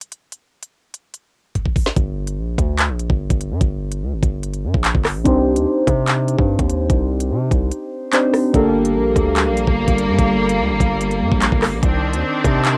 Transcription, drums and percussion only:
0.01 closed hi-hat medium
0.12 closed hi-hat medium
0.32 closed hi-hat medium
0.63 closed hi-hat medium
0.94 closed hi-hat medium
1.14 closed hi-hat medium
1.55 kick medium
1.55 closed hi-hat medium
1.66 kick medium
1.76 kick medium
1.76 open hi-hat medium
1.86 snare medium
1.96 kick loud
1.96 closed hi-hat medium
2.27 closed hi-hat medium
2.58 kick loud
2.58 closed hi-hat medium
2.78 clap loud
2.78 closed hi-hat medium
2.99 closed hi-hat medium
3.10 kick medium
3.30 kick medium
3.30 closed hi-hat medium
3.41 closed hi-hat medium
3.61 kick loud
3.61 closed hi-hat medium
3.92 closed hi-hat medium
4.23 kick loud
4.23 closed hi-hat medium
4.43 closed hi-hat medium
4.53 closed hi-hat soft
4.74 kick loud
4.84 clap loud
4.84 closed hi-hat medium
4.95 kick loud
5.05 cross-stick loud
5.05 clap medium
5.05 open hi-hat medium
5.25 kick loud
5.25 closed hi-hat medium
5.56 closed hi-hat medium
5.87 kick loud
5.87 closed hi-hat medium
6.07 clap loud
6.07 closed hi-hat medium
6.28 closed hi-hat medium
6.38 kick loud
6.59 kick medium
6.59 closed hi-hat medium
6.70 closed hi-hat medium
6.90 kick loud
6.90 closed hi-hat medium
7.20 closed hi-hat medium
7.51 kick loud
7.51 closed hi-hat medium
7.72 closed hi-hat medium
8.13 clap loud
8.13 closed hi-hat medium
8.34 cross-stick loud
8.34 open hi-hat medium
8.54 kick loud
8.54 closed hi-hat medium
8.85 closed hi-hat medium
9.16 kick loud
9.16 closed hi-hat medium
9.36 clap loud
9.36 closed hi-hat medium
9.57 closed hi-hat medium
9.67 kick medium
9.88 kick loud
9.88 closed hi-hat medium
9.98 closed hi-hat medium
10.19 kick loud
10.19 closed hi-hat medium
10.49 closed hi-hat medium
10.80 kick loud
10.80 closed hi-hat medium
11.01 closed hi-hat medium
11.11 closed hi-hat soft
11.32 kick medium
11.42 clap loud
11.42 closed hi-hat medium
11.52 kick loud
11.62 cross-stick loud
11.62 clap medium
11.62 open hi-hat medium
11.83 kick loud
11.83 closed hi-hat medium
12.14 closed hi-hat medium
12.45 kick loud
12.45 closed hi-hat medium
12.65 clap loud
12.65 closed hi-hat medium

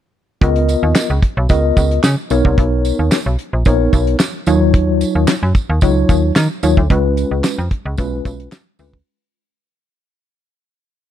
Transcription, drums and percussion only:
0.41 kick loud
0.41 closed hi-hat loud
0.56 closed hi-hat medium
0.69 closed hi-hat medium
0.69 tambourine medium
0.95 snare loud
0.95 clap medium
0.95 closed hi-hat medium
0.95 tambourine medium
1.23 kick medium
1.23 closed hi-hat medium
1.49 kick loud
1.49 closed hi-hat medium
1.49 tambourine soft
1.77 kick medium
1.77 closed hi-hat medium
1.77 tambourine soft
1.91 closed hi-hat medium
2.03 snare loud
2.03 clap medium
2.03 closed hi-hat medium
2.03 tambourine medium
2.30 closed hi-hat medium
2.30 tambourine medium
2.45 kick medium
2.58 kick loud
2.58 closed hi-hat loud
2.85 closed hi-hat medium
2.85 tambourine soft
3.11 snare loud
3.11 clap medium
3.11 closed hi-hat medium
3.11 tambourine medium
3.39 closed hi-hat medium
3.65 kick loud
3.65 closed hi-hat medium
3.65 tambourine medium
3.93 kick medium
3.93 closed hi-hat medium
3.93 tambourine soft
4.07 closed hi-hat medium
4.19 snare loud
4.19 clap medium
4.19 closed hi-hat medium
4.19 tambourine medium
4.46 closed hi-hat medium
4.46 tambourine medium
4.74 kick loud
4.74 closed hi-hat loud
5.01 closed hi-hat medium
5.01 tambourine soft
5.27 snare loud
5.27 clap medium
5.27 closed hi-hat medium
5.27 tambourine medium
5.55 kick medium
5.55 closed hi-hat medium
5.55 tambourine soft
5.81 kick loud
5.81 closed hi-hat medium
5.81 tambourine soft
6.09 kick medium
6.09 closed hi-hat medium
6.09 tambourine soft
6.36 snare loud
6.36 clap medium
6.36 closed hi-hat medium
6.36 tambourine medium
6.63 closed hi-hat medium
6.63 tambourine medium
6.77 kick medium
6.90 kick loud
6.90 closed hi-hat loud
7.17 closed hi-hat medium
7.17 tambourine medium
7.44 snare loud
7.44 clap medium
7.44 closed hi-hat medium
7.44 tambourine medium
7.71 kick medium
7.71 closed hi-hat medium
7.98 kick loud
7.98 closed hi-hat medium
7.98 tambourine soft
8.25 kick medium
8.25 closed hi-hat medium
8.25 tambourine medium
8.40 closed hi-hat medium
8.52 snare loud
8.52 clap medium
8.52 closed hi-hat medium
8.52 tambourine medium
8.79 open hi-hat medium
8.79 tambourine medium
8.93 kick medium

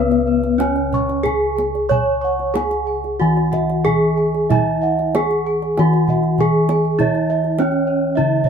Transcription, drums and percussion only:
0.12 kendang slap soft
0.43 kendang slap soft
0.60 kendang high medium
0.76 kendang slap soft
0.93 kendang low soft
1.09 kendang slap soft
1.26 kendang low soft
1.58 kendang high soft
1.75 kendang slap soft
1.91 kendang low medium
2.39 kendang slap soft
2.55 kendang high medium
2.71 kendang slap soft
3.04 kendang slap soft
3.37 kendang slap soft
3.53 kendang low medium
3.70 kendang slap soft
3.86 kendang low soft
4.35 kendang slap soft
4.50 kendang low medium
4.99 kendang slap soft
5.15 kendang high medium
5.31 kendang slap soft
5.62 kendang slap soft
5.77 kendang high medium
5.93 kendang slap soft
6.08 kendang low soft
6.23 kendang slap soft
6.38 kendang low soft
6.69 kendang high soft
6.85 kendang slap soft
7.00 kendang low medium
7.15 kendang slap soft
7.44 kendang slap soft
7.58 kendang high medium
7.72 kendang slap soft
8.44 kendang low soft

